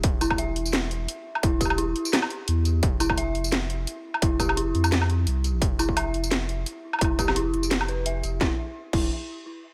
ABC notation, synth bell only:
X:1
M:4/4
L:1/8
Q:"Swing 16ths" 1/4=172
K:Flyd
V:1 name="Synth bell"
z E e z4 z | E G E4 z2 | z E e z4 z | E G E4 z2 |
z E e z4 z | E G E3 B e z | E z2 E z4 |]